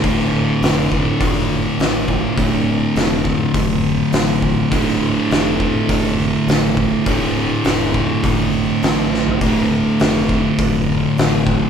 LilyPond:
<<
  \new Staff \with { instrumentName = "Distorted electric guitar" } { \clef bass \time 4/4 \key d \minor \tempo 4 = 102 <d, a, d>1 | <d, a, d>1 | <d, a, d>1 | <d, a, d>1 |
<d, a, d>1 | }
  \new Staff \with { instrumentName = "Fingered electric bass" } { \clef bass \time 4/4 \key d \minor d,,4 f,,4 f,,4 a,,4 | d,,4 f,,4 f,,4 a,,4 | d,,4 f,,4 f,,4 a,,4 | d,,4 f,,4 f,,4 a,,4 |
d,,4 f,,4 f,,4 a,,4 | }
  \new DrumStaff \with { instrumentName = "Drums" } \drummode { \time 4/4 <hho bd>4 <hho sn>8 bd8 <hho bd>4 <hho sn>8 bd8 | <hho bd>4 <hho sn>8 bd8 <hho bd>4 <hho sn>8 bd8 | <hho bd>16 sn8. <hho sn>8 bd8 <hho bd>4 <hho sn>8 bd8 | <hho bd>4 <hho sn>8 bd8 <hho bd>4 <hho sn>8 sn16 tomfh16 |
<hho bd>4 <hho sn>8 bd8 <hho bd>4 <hho sn>8 bd8 | }
>>